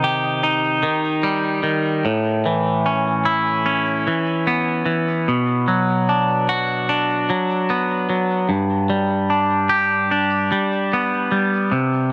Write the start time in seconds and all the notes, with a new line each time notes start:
Already playing: C3 D#3 D#4
0.04 G4
0.43 D#4
0.83 D#3
1.23 G3
1.63 D#3
2.05 A2
2.46 E3
2.86 C#4
3.25 E4
3.66 C#4
4.07 E3
4.47 B3
4.86 E3
5.28 B2
5.68 F#3
6.09 D4
6.49 F#4
6.89 D4
7.30 F#3
7.70 B3
8.10 F#3
8.49 G2
8.90 G3
9.30 D4
9.69 G4
10.11 D4
10.52 G3
10.93 B3
11.32 G3
11.72 C3